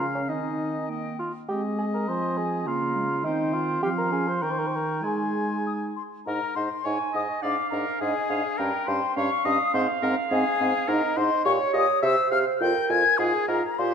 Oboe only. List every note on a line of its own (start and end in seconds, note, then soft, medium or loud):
0.00 0.30 F5 soft
0.29 0.89 D#5 soft
0.90 1.19 D#5 soft
1.50 2.63 D#5 soft
2.68 3.24 F5 soft
3.26 3.82 C5 soft
3.83 4.44 F5 medium
4.42 5.05 G5 soft
5.03 5.96 G#5 soft
6.27 6.54 A#4 medium
6.56 6.69 C5 soft
6.84 6.97 C#5 soft
7.13 7.42 D#5 medium
7.42 7.55 D5 medium
7.72 8.00 A#4 medium
8.01 8.59 G#4 medium
8.57 8.89 A#4 medium
8.88 9.17 C5 medium
9.17 9.30 C#5 medium
9.44 9.58 D#5 medium
9.74 9.87 C5 medium
10.02 10.15 A#4 medium
10.31 10.89 G#4 medium
10.88 11.18 A#4 medium
11.17 11.44 C5 medium
11.45 11.73 C#5 medium
11.73 11.87 D#5 medium
12.02 12.16 E5 medium
12.31 12.44 F5 medium
12.61 12.92 G5 medium
12.90 13.18 G#5 medium
13.19 13.47 G#4 medium
13.48 13.62 A#4 medium
13.78 13.94 C5 medium